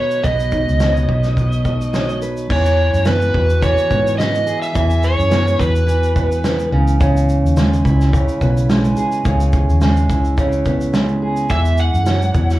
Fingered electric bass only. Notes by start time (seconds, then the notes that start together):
0.24 B1
0.68 C#2
1.09 B1
2.50 E2
2.93 F#2
3.34 E2
3.91 G#2
4.75 E2
5.19 F#2
5.59 E2
6.72 C#2
7.44 D#2
7.85 C#2
8.41 B1
9.25 C#2
9.69 D#2
10.09 C#2
11.50 E2
11.94 F#2
12.35 E2